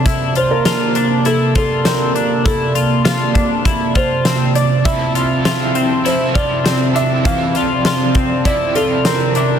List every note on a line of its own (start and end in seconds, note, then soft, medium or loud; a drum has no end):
0.00 9.59 C3 medium
0.00 9.59 A5 medium
0.06 4.82 A#3 medium
0.06 0.36 E4 medium
0.06 4.82 D5 medium
0.06 kick medium
0.06 closed hi-hat medium
0.35 0.65 F4 medium
0.35 0.52 C5 medium
0.35 closed hi-hat soft
0.51 1.28 A#4 medium
0.65 0.96 F4 medium
0.65 snare loud
0.65 closed hi-hat medium
0.95 1.26 D4 medium
0.95 closed hi-hat soft
1.25 1.56 E4 medium
1.25 1.55 A4 medium
1.25 closed hi-hat medium
1.55 1.86 F4 medium
1.55 1.84 A4 medium
1.55 kick medium
1.55 closed hi-hat soft
1.85 2.15 C4 medium
1.85 2.47 A#4 medium
1.85 snare medium
1.85 closed hi-hat medium
2.15 2.45 D4 medium
2.15 closed hi-hat soft
2.45 2.75 E4 medium
2.45 4.00 A4 medium
2.45 kick medium
2.45 closed hi-hat medium
2.75 3.04 F4 medium
2.75 closed hi-hat soft
3.05 3.35 F4 medium
3.05 snare loud
3.05 closed hi-hat medium
3.35 3.65 D4 medium
3.35 kick medium
3.35 closed hi-hat soft
3.65 3.95 E4 medium
3.65 kick medium
3.65 closed hi-hat medium
3.95 4.25 F4 medium
3.95 4.58 C5 medium
3.95 kick medium
3.95 closed hi-hat soft
4.25 4.55 C4 medium
4.25 snare medium
4.25 closed hi-hat medium
4.55 4.86 D4 medium
4.55 4.86 D5 medium
4.55 closed hi-hat soft
4.84 5.43 F3 medium
4.84 5.45 C4 medium
4.84 9.59 C4 medium
4.84 5.15 E4 medium
4.84 5.46 E4 medium
4.84 5.49 A4 medium
4.84 6.09 E5 medium
4.84 7.23 E5 medium
4.84 kick medium
4.84 closed hi-hat medium
5.15 5.44 F4 medium
5.15 closed hi-hat soft
5.44 6.03 F3 soft
5.44 6.04 C4 soft
5.44 6.05 E4 soft
5.44 5.75 F4 medium
5.44 snare loud
5.44 closed hi-hat medium
5.49 6.07 A4 soft
5.75 6.05 C4 medium
5.75 closed hi-hat soft
6.04 6.99 F3 medium
6.04 6.96 C4 medium
6.04 6.34 E4 medium
6.04 6.95 E4 medium
6.04 6.93 A4 medium
6.04 6.37 C5 medium
6.04 closed hi-hat medium
6.34 6.65 F4 medium
6.34 6.97 D5 medium
6.34 kick medium
6.34 closed hi-hat soft
6.65 6.95 C4 medium
6.65 snare medium
6.65 closed hi-hat medium
6.93 7.25 D4 medium
6.93 7.26 E4 soft
6.93 7.24 A4 soft
6.93 7.27 E5 medium
6.93 closed hi-hat soft
6.99 7.25 C4 soft
7.23 7.55 E3 medium
7.23 8.44 F3 medium
7.23 8.45 C4 medium
7.23 9.59 D5 medium
7.23 8.49 F5 medium
7.23 kick medium
7.23 closed hi-hat medium
7.31 9.59 A4 medium
7.55 7.85 F4 medium
7.55 closed hi-hat soft
7.85 8.16 F4 medium
7.85 snare loud
7.85 closed hi-hat medium
8.15 8.46 C4 medium
8.15 kick medium
8.15 closed hi-hat soft
8.44 9.40 F3 medium
8.44 9.36 C4 medium
8.44 8.76 E4 medium
8.44 9.36 E4 medium
8.44 8.77 D5 medium
8.44 kick medium
8.44 closed hi-hat medium
8.75 9.06 F4 medium
8.75 9.06 A4 medium
8.75 closed hi-hat soft
9.05 9.36 C4 medium
9.05 9.59 A#4 medium
9.05 snare loud
9.05 closed hi-hat medium
9.35 9.59 D4 medium
9.35 9.59 E4 soft
9.35 closed hi-hat soft
9.40 9.59 C4 soft